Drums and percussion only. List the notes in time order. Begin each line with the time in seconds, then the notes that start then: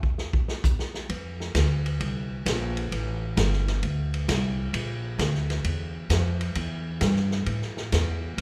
0.03 kick
0.18 snare
0.33 kick
0.48 snare
0.64 kick, hi-hat pedal
0.79 snare
0.94 snare
1.09 ride
1.40 snare
1.55 snare, hi-hat pedal, ride
1.86 ride
2.01 ride
2.46 snare, hi-hat pedal, ride
2.77 ride
2.92 ride
3.37 snare, hi-hat pedal, ride
3.53 snare
3.68 snare, ride
3.83 ride
4.14 ride
4.29 snare, hi-hat pedal, ride
4.74 ride
5.19 snare, hi-hat pedal, ride
5.35 snare
5.50 snare, ride
5.64 ride
6.10 snare, hi-hat pedal, ride
6.41 ride
6.55 ride
7.01 snare, hi-hat pedal, ride
7.16 snare
7.31 snare
7.46 ride
7.62 snare
7.77 snare
7.92 snare, hi-hat pedal, ride